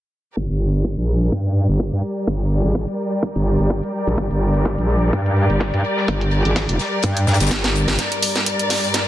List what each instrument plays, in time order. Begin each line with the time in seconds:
0.37 wobble bass G1, string section G3 G4 A#4 D5, kick, closed hi-hat
0.50 wobble bass G1, closed hi-hat
0.74 closed hi-hat
0.85 kick, closed hi-hat
0.98 wobble bass A#1, closed hi-hat
1.32 wobble bass G2, kick, closed hi-hat
1.45 closed hi-hat
1.69 wobble bass G1, closed hi-hat
1.80 kick, closed hi-hat
1.93 wobble bass G2, closed hi-hat
2.27 wobble bass G1, kick, closed hi-hat
2.40 closed hi-hat
2.64 wobble bass G#1, closed hi-hat
2.75 kick, closed hi-hat
2.88 closed hi-hat
3.23 kick, closed hi-hat
3.36 wobble bass G1, closed hi-hat
3.59 wobble bass G1, closed hi-hat
3.70 kick, closed hi-hat
3.83 closed hi-hat
4.07 wobble bass A#1, closed hi-hat
4.18 wobble bass G1, kick, closed hi-hat
4.31 wobble bass G1, closed hi-hat
4.42 closed hi-hat
4.55 snare, closed hi-hat
4.65 kick, snare, closed hi-hat
4.78 wobble bass A#1, closed hi-hat
4.89 closed hi-hat
5.13 wobble bass G2, kick, closed hi-hat
5.26 closed hi-hat
5.36 closed hi-hat
5.50 wobble bass G1, closed hi-hat
5.60 kick, snare, closed hi-hat
5.74 wobble bass G2, closed hi-hat
5.84 closed hi-hat
5.97 snare
6.08 wobble bass G1, kick, closed hi-hat
6.21 closed hi-hat
6.31 closed hi-hat
6.45 wobble bass G#1, closed hi-hat
6.56 kick, snare, closed hi-hat
6.69 wobble bass F1, closed hi-hat
6.79 snare, closed hi-hat
7.03 wobble bass G2, kick, closed hi-hat
7.17 closed hi-hat
7.27 wobble bass G2, snare, closed hi-hat
7.34 snare, closed hi-hat
7.40 wobble bass G1, snare, closed hi-hat
7.46 snare, closed hi-hat
7.51 kick, snare, closed hi-hat
7.64 snare, closed hi-hat
7.76 closed hi-hat
7.88 wobble bass G1, snare, closed hi-hat
7.99 string section G2 G3 A#4 D5, snare, closed hi-hat, tambourine
8.12 closed hi-hat
8.23 open hi-hat, tambourine
8.36 snare, closed hi-hat, tambourine
8.46 closed hi-hat, tambourine
8.59 closed hi-hat
8.70 snare, open hi-hat, tambourine
8.84 tambourine
8.94 snare, closed hi-hat, tambourine